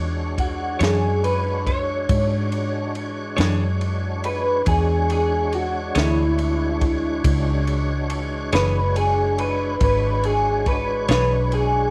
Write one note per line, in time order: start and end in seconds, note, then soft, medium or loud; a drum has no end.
0.00 0.77 E2 medium
0.00 11.90 E3 medium
0.00 4.62 G#3 medium
0.00 11.90 G#3 medium
0.00 4.62 D4 medium
0.00 11.90 D4 medium
0.00 4.62 F#4 medium
0.00 4.62 C#5 medium
0.38 0.80 F#4 medium
0.38 kick medium
0.38 ride medium
0.79 2.05 F#2 medium
0.79 1.07 E3 soft
0.79 1.06 D4 medium
0.79 1.06 G#4 medium
0.79 1.23 G#4 medium
0.79 1.06 C#5 medium
0.79 snare loud
0.79 ride medium
1.24 1.65 B4 medium
1.24 ride medium
1.67 3.33 C#5 medium
1.67 kick medium
1.67 ride medium
2.09 3.34 G#2 medium
2.09 kick loud
2.09 ride medium
2.52 ride medium
2.95 ride medium
3.33 4.20 B4 medium
3.33 3.63 C#5 medium
3.37 4.63 F#2 medium
3.37 3.64 E3 medium
3.37 3.64 D4 medium
3.37 3.63 G#4 medium
3.37 snare loud
3.37 ride medium
3.81 ride medium
4.24 4.66 B4 medium
4.24 ride medium
4.65 5.91 E2 medium
4.65 9.76 G#3 medium
4.65 9.76 D4 medium
4.65 9.76 F#4 medium
4.65 5.09 G#4 medium
4.65 9.76 C#5 medium
4.65 kick medium
4.65 ride medium
5.10 5.52 G#4 medium
5.10 ride medium
5.52 5.95 F#4 medium
5.52 ride medium
5.95 7.20 D2 medium
5.95 6.22 E3 soft
5.95 6.21 D4 medium
5.95 7.64 E4 medium
5.95 6.21 G#4 medium
5.95 6.21 C#5 medium
5.95 snare loud
5.95 ride medium
6.38 ride medium
6.81 kick medium
6.81 ride medium
7.24 8.49 C#2 medium
7.24 kick loud
7.24 ride loud
7.67 ride medium
8.10 ride medium
8.53 9.77 F#1 medium
8.53 8.79 E3 medium
8.53 8.79 D4 medium
8.53 8.78 G#4 medium
8.53 8.94 B4 medium
8.53 8.78 C#5 medium
8.53 snare loud
8.53 ride medium
8.96 9.37 G#4 medium
8.96 ride medium
9.38 9.80 B4 medium
9.38 ride medium
9.81 11.05 G#1 medium
9.81 11.90 G#3 medium
9.81 11.90 D4 medium
9.81 11.90 F#4 medium
9.81 10.23 B4 medium
9.81 11.90 C#5 medium
9.81 kick loud
9.81 ride medium
10.23 10.66 G#4 medium
10.23 ride medium
10.66 11.08 B4 loud
10.66 kick medium
10.66 ride medium
11.08 11.90 B1 medium
11.08 11.35 E3 soft
11.08 11.35 D4 medium
11.08 11.35 G#4 medium
11.08 11.51 B4 medium
11.08 11.34 C#5 medium
11.08 snare loud
11.08 ride medium
11.52 11.90 G#4 medium
11.52 ride medium